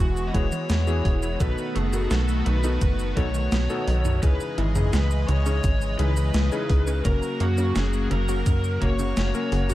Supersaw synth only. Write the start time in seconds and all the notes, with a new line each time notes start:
Already playing: E3 G#3 B3 F#4
1.40 D#3 A3 F#4
4.23 C#3 E3 G#3 D#5
7.05 F#3 A#3 F#4